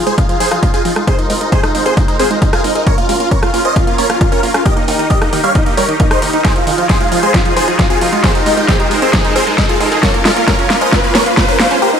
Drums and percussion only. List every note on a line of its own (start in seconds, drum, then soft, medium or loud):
0.07 closed hi-hat medium
0.18 kick loud
0.18 closed hi-hat medium
0.29 closed hi-hat medium
0.40 open hi-hat loud
0.51 cross-stick medium
0.51 closed hi-hat medium
0.63 kick loud
0.63 closed hi-hat medium
0.74 closed hi-hat medium
0.85 open hi-hat medium
0.96 cross-stick medium
0.96 closed hi-hat medium
1.07 kick loud
1.07 closed hi-hat medium
1.19 closed hi-hat medium
1.30 open hi-hat loud
1.41 closed hi-hat medium
1.52 kick loud
1.52 closed hi-hat medium
1.64 cross-stick medium
1.64 closed hi-hat medium
1.75 open hi-hat medium
1.86 closed hi-hat medium
1.97 kick loud
1.97 closed hi-hat medium
2.08 closed hi-hat medium
2.19 open hi-hat loud
2.31 closed hi-hat medium
2.42 kick loud
2.42 closed hi-hat medium
2.53 cross-stick medium
2.53 closed hi-hat medium
2.64 open hi-hat medium
2.75 closed hi-hat medium
2.87 kick loud
2.87 closed hi-hat medium
2.98 closed hi-hat medium
3.09 open hi-hat loud
3.20 closed hi-hat medium
3.31 kick loud
3.31 closed hi-hat medium
3.43 cross-stick medium
3.43 closed hi-hat soft
3.54 open hi-hat loud
3.65 closed hi-hat medium
3.76 kick loud
3.76 closed hi-hat medium
3.87 closed hi-hat medium
3.98 open hi-hat loud
4.10 cross-stick medium
4.10 closed hi-hat medium
4.21 kick loud
4.21 closed hi-hat medium
4.32 closed hi-hat medium
4.43 open hi-hat medium
4.54 cross-stick medium
4.54 closed hi-hat medium
4.66 kick loud
4.66 closed hi-hat medium
4.77 closed hi-hat medium
4.88 open hi-hat loud
4.99 closed hi-hat medium
5.10 kick loud
5.10 closed hi-hat medium
5.22 cross-stick medium
5.22 closed hi-hat soft
5.33 open hi-hat loud
5.44 closed hi-hat soft
5.55 kick loud
5.55 closed hi-hat medium
5.66 closed hi-hat soft
5.77 open hi-hat loud
5.89 closed hi-hat soft
6.00 kick loud
6.00 closed hi-hat medium
6.11 cross-stick medium
6.11 closed hi-hat soft
6.22 open hi-hat medium
6.33 closed hi-hat medium
6.45 kick loud
6.45 snare soft
6.45 closed hi-hat medium
6.56 closed hi-hat medium
6.67 open hi-hat loud
6.78 closed hi-hat medium
6.89 kick loud
6.89 snare medium
6.89 closed hi-hat medium
7.01 closed hi-hat soft
7.12 open hi-hat medium
7.23 closed hi-hat soft
7.34 kick loud
7.34 snare medium
7.34 closed hi-hat medium
7.45 closed hi-hat soft
7.57 open hi-hat loud
7.68 closed hi-hat medium
7.79 kick loud
7.79 snare medium
7.79 closed hi-hat medium
7.90 closed hi-hat medium
8.01 open hi-hat medium
8.13 closed hi-hat soft
8.24 kick loud
8.24 snare medium
8.24 closed hi-hat medium
8.35 closed hi-hat medium
8.46 open hi-hat loud
8.57 closed hi-hat medium
8.69 kick loud
8.69 snare medium
8.69 closed hi-hat medium
8.80 closed hi-hat soft
8.91 open hi-hat medium
9.02 closed hi-hat medium
9.13 kick loud
9.13 snare medium
9.13 closed hi-hat medium
9.25 closed hi-hat medium
9.36 open hi-hat loud
9.47 closed hi-hat medium
9.58 kick loud
9.58 snare medium
9.58 closed hi-hat medium
9.69 closed hi-hat medium
9.81 open hi-hat medium
9.92 closed hi-hat soft
10.03 kick loud
10.03 snare medium
10.03 closed hi-hat medium
10.14 closed hi-hat medium
10.25 snare medium
10.25 open hi-hat loud
10.37 closed hi-hat medium
10.48 kick loud
10.48 snare medium
10.48 closed hi-hat medium
10.59 closed hi-hat medium
10.70 snare medium
10.70 open hi-hat medium
10.81 closed hi-hat medium
10.93 kick loud
10.93 snare medium
10.93 closed hi-hat medium
11.04 closed hi-hat medium
11.15 snare medium
11.15 open hi-hat loud
11.26 closed hi-hat medium
11.37 kick loud
11.37 snare medium
11.37 closed hi-hat medium
11.49 closed hi-hat medium
11.60 snare medium
11.60 open hi-hat medium
11.71 closed hi-hat medium